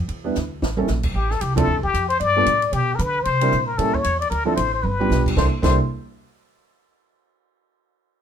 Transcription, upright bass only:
0.08 0.34 E2 medium
0.36 0.61 D2 medium
0.62 0.87 A1 medium
0.89 1.14 A#1 medium
1.14 1.40 A1 medium
1.41 1.66 C2 medium
1.67 1.77 D2 medium
1.77 1.84 C2 medium
1.85 1.93 A1 medium
1.94 2.19 F2 medium
2.20 2.46 G2 medium
2.47 2.72 A2 medium
2.73 2.98 B2 medium
2.99 3.24 D3 medium
3.26 3.51 C3 medium
3.52 3.78 A#2 medium
3.78 4.04 A2 medium
4.05 4.30 E2 medium
4.31 4.56 D2 medium
4.57 4.83 A1 medium
4.83 5.09 G1 medium
5.10 5.35 B1 medium
5.37 5.45 C2 medium
5.63 5.78 C2 medium

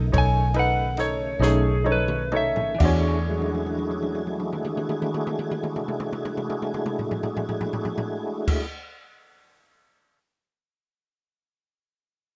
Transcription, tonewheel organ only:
0.00 2.76 C#3 medium
0.00 2.75 D#3 medium
0.00 2.75 A3 medium
2.79 8.66 A3 medium
2.79 3.28 D4 medium
2.79 8.66 E4 medium
2.79 8.66 G#4 medium
3.29 8.62 G#3 medium
3.29 8.63 D4 medium
3.29 8.62 F#4 medium

